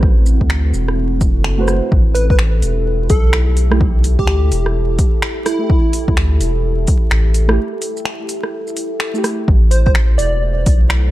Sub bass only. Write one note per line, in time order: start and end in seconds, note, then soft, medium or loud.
0.00 0.39 A1 loud
0.41 0.73 D2 medium
0.73 1.36 E1 medium
1.35 1.81 F#1 medium
1.92 2.62 A1 medium
2.62 3.09 E1 medium
3.10 4.17 B1 medium
4.19 4.51 D2 medium
4.51 4.98 E1 medium
6.08 6.39 D2 medium
6.40 6.87 E1 medium
7.11 7.59 A1 loud
9.48 10.18 A1 medium
10.19 10.65 E1 medium
10.66 11.11 B1 medium